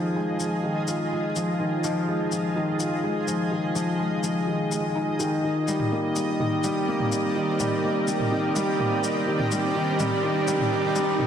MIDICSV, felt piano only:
0, 0, Header, 1, 2, 480
1, 0, Start_track
1, 0, Tempo, 480000
1, 1598, Time_signature, 4, 2, 24, 8
1, 11268, End_track
2, 0, Start_track
2, 0, Title_t, "Felt piano"
2, 0, Program_c, 0, 0
2, 0, Control_c, 0, 64, 127
2, 0, Note_on_c, 0, 51, 70
2, 0, Note_on_c, 0, 53, 87
2, 0, Note_on_c, 0, 56, 65
2, 0, Note_on_c, 0, 65, 69
2, 145, Note_off_c, 0, 53, 0
2, 158, Note_off_c, 0, 56, 0
2, 158, Note_on_c, 0, 56, 66
2, 386, Note_off_c, 0, 56, 0
2, 400, Note_on_c, 0, 53, 66
2, 536, Note_off_c, 0, 53, 0
2, 635, Note_off_c, 0, 51, 0
2, 635, Note_on_c, 0, 51, 75
2, 865, Note_off_c, 0, 51, 0
2, 879, Note_off_c, 0, 65, 0
2, 879, Note_on_c, 0, 65, 69
2, 1015, Note_off_c, 0, 65, 0
2, 1123, Note_on_c, 0, 56, 64
2, 1257, Note_off_c, 0, 56, 0
2, 1360, Note_on_c, 0, 53, 74
2, 1496, Note_off_c, 0, 53, 0
2, 1601, Note_on_c, 0, 51, 69
2, 1827, Note_off_c, 0, 51, 0
2, 1840, Note_on_c, 0, 53, 89
2, 2067, Note_off_c, 0, 53, 0
2, 2080, Note_on_c, 0, 56, 64
2, 2307, Note_off_c, 0, 56, 0
2, 2324, Note_on_c, 0, 53, 69
2, 2458, Note_off_c, 0, 53, 0
2, 2562, Note_on_c, 0, 51, 78
2, 2788, Note_off_c, 0, 51, 0
2, 2799, Note_on_c, 0, 65, 72
2, 2935, Note_off_c, 0, 65, 0
2, 3036, Note_on_c, 0, 56, 69
2, 3174, Note_off_c, 0, 56, 0
2, 3277, Note_on_c, 0, 53, 77
2, 3414, Note_off_c, 0, 53, 0
2, 3515, Note_on_c, 0, 51, 69
2, 3744, Note_off_c, 0, 51, 0
2, 3754, Note_on_c, 0, 53, 88
2, 3984, Note_off_c, 0, 53, 0
2, 3993, Note_on_c, 0, 56, 65
2, 4224, Note_off_c, 0, 56, 0
2, 4232, Note_on_c, 0, 53, 71
2, 4372, Note_off_c, 0, 53, 0
2, 4476, Note_on_c, 0, 51, 76
2, 4705, Note_off_c, 0, 51, 0
2, 4715, Note_on_c, 0, 56, 71
2, 4853, Note_off_c, 0, 56, 0
2, 4954, Note_on_c, 0, 63, 69
2, 5184, Note_off_c, 0, 63, 0
2, 5195, Note_on_c, 0, 51, 96
2, 5424, Note_off_c, 0, 51, 0
2, 5439, Note_on_c, 0, 51, 66
2, 5451, Control_c, 0, 64, 0
2, 5635, Control_c, 0, 64, 127
2, 5666, Note_off_c, 0, 51, 0
2, 5677, Note_on_c, 0, 55, 79
2, 5906, Note_off_c, 0, 55, 0
2, 5920, Note_on_c, 0, 58, 65
2, 6147, Note_off_c, 0, 58, 0
2, 6158, Note_on_c, 0, 55, 65
2, 6295, Note_off_c, 0, 55, 0
2, 6399, Note_on_c, 0, 51, 75
2, 6626, Note_off_c, 0, 51, 0
2, 6640, Note_on_c, 0, 55, 94
2, 6867, Note_off_c, 0, 55, 0
2, 6882, Note_on_c, 0, 58, 71
2, 7108, Note_off_c, 0, 58, 0
2, 7120, Note_on_c, 0, 55, 70
2, 7256, Note_off_c, 0, 55, 0
2, 7361, Note_on_c, 0, 51, 75
2, 7587, Note_off_c, 0, 51, 0
2, 7600, Note_on_c, 0, 55, 93
2, 7827, Note_off_c, 0, 55, 0
2, 7839, Note_on_c, 0, 58, 62
2, 8066, Note_off_c, 0, 58, 0
2, 8080, Note_on_c, 0, 55, 70
2, 8215, Note_off_c, 0, 55, 0
2, 8318, Note_on_c, 0, 51, 79
2, 8546, Note_off_c, 0, 51, 0
2, 8558, Note_on_c, 0, 55, 102
2, 8786, Note_off_c, 0, 55, 0
2, 8794, Note_on_c, 0, 58, 74
2, 9024, Note_off_c, 0, 58, 0
2, 9033, Note_on_c, 0, 55, 75
2, 9172, Note_off_c, 0, 55, 0
2, 9275, Note_on_c, 0, 51, 80
2, 9505, Note_off_c, 0, 51, 0
2, 9518, Note_on_c, 0, 55, 96
2, 9739, Note_off_c, 0, 55, 0
2, 9756, Note_on_c, 0, 51, 80
2, 9985, Note_off_c, 0, 51, 0
2, 9998, Note_on_c, 0, 55, 105
2, 10219, Note_off_c, 0, 55, 0
2, 10240, Note_on_c, 0, 51, 84
2, 10467, Note_off_c, 0, 51, 0
2, 10479, Note_on_c, 0, 55, 106
2, 10699, Note_off_c, 0, 55, 0
2, 10718, Note_on_c, 0, 51, 80
2, 10946, Note_off_c, 0, 51, 0
2, 10955, Note_on_c, 0, 55, 105
2, 11177, Note_off_c, 0, 55, 0
2, 11195, Note_on_c, 0, 51, 83
2, 11268, Note_off_c, 0, 51, 0
2, 11268, End_track
0, 0, End_of_file